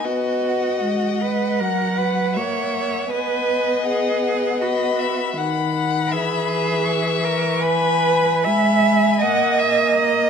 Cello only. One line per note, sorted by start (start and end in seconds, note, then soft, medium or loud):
0.05 1.23 F#4 medium
1.21 1.61 B4 medium
1.60 1.99 A#4 medium
1.98 2.38 B4 medium
2.37 3.12 C#5 medium
3.11 3.85 B4 medium
3.86 4.63 G#4 medium
4.61 5.38 F#4 medium
6.07 6.14 A#4 medium
6.13 7.26 G#4 medium
7.25 7.65 A#4 medium
7.64 8.45 B4 medium
8.44 9.20 E5 medium
9.21 10.30 D#5 medium